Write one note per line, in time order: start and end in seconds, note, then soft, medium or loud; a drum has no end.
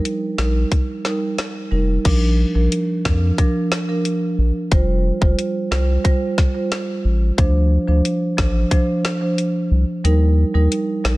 0.00 0.34 G3 medium
0.00 0.34 D#4 medium
0.00 0.34 A#4 medium
0.05 closed hi-hat medium
0.38 0.65 A#1 loud
0.38 0.69 G3 medium
0.38 0.69 D#4 medium
0.38 0.69 A#4 medium
0.38 snare loud
0.72 kick medium
0.72 closed hi-hat medium
1.05 1.17 G3 medium
1.05 1.17 D#4 medium
1.05 1.17 A#4 medium
1.05 snare medium
1.38 snare loud
1.38 closed hi-hat medium
1.71 1.98 F1 medium
1.71 1.84 G3 medium
1.71 1.84 D#4 medium
1.71 1.84 A#4 medium
2.05 2.45 A#1 loud
2.05 2.17 F3 medium
2.05 2.17 D4 medium
2.05 2.17 A#4 loud
2.05 kick loud
2.05 closed hi-hat medium
2.05 crash loud
2.55 2.68 A#1 loud
2.55 3.01 F3 medium
2.55 3.01 D4 medium
2.55 3.01 A#4 medium
2.72 closed hi-hat medium
3.05 3.32 F2 loud
3.05 3.36 F3 medium
3.05 3.36 D4 medium
3.05 3.36 A#4 medium
3.05 kick medium
3.05 snare loud
3.38 3.84 F3 loud
3.38 3.84 D4 medium
3.38 3.85 A#4 loud
3.38 kick medium
3.38 closed hi-hat medium
3.72 snare loud
3.88 4.00 F3 medium
3.88 4.01 D4 medium
3.88 4.01 A#4 medium
4.05 closed hi-hat medium
4.38 4.52 A#1 medium
4.71 5.11 F1 loud
4.71 4.84 G3 medium
4.71 4.84 F4 medium
4.71 4.84 C5 loud
4.71 kick loud
4.71 closed hi-hat medium
5.21 5.35 F1 loud
5.21 5.67 G3 medium
5.21 5.68 F4 medium
5.21 5.68 C5 medium
5.21 kick loud
5.39 closed hi-hat medium
5.71 5.98 C2 loud
5.71 6.02 G3 medium
5.71 6.02 F4 medium
5.71 6.02 C5 medium
5.71 snare loud
6.05 6.51 G3 medium
6.05 6.51 F4 medium
6.05 6.51 C5 loud
6.05 kick loud
6.05 closed hi-hat medium
6.38 kick medium
6.38 snare medium
6.54 6.67 G3 medium
6.54 6.67 F4 medium
6.54 6.67 C5 medium
6.72 snare loud
6.72 closed hi-hat medium
7.05 7.31 A1 medium
7.38 7.78 D2 loud
7.38 7.50 F3 medium
7.38 7.50 D4 medium
7.38 7.51 C5 loud
7.38 kick loud
7.38 closed hi-hat medium
7.88 8.01 D2 medium
7.88 8.34 F3 medium
7.88 8.34 D4 medium
7.88 8.34 C5 medium
8.05 closed hi-hat medium
8.38 8.65 A1 loud
8.38 8.69 F3 medium
8.38 8.69 D4 medium
8.38 8.69 C5 medium
8.38 kick medium
8.38 snare loud
8.71 9.17 F3 medium
8.71 9.17 D4 medium
8.71 9.18 C5 loud
8.71 kick medium
8.71 closed hi-hat medium
9.05 snare loud
9.21 9.34 F3 medium
9.21 9.34 D4 medium
9.21 9.34 C5 medium
9.38 closed hi-hat medium
9.71 9.85 C2 loud
10.04 10.44 D#2 loud
10.04 10.17 G3 medium
10.04 10.17 D#4 medium
10.04 10.17 A#4 loud
10.04 closed hi-hat medium
10.54 10.68 D#2 loud
10.54 11.01 G3 medium
10.54 11.01 D#4 medium
10.54 11.01 A#4 medium
10.72 closed hi-hat medium
11.04 11.17 A#1 loud
11.04 11.17 G3 medium
11.04 11.17 D#4 medium
11.04 11.17 A#4 medium
11.04 snare loud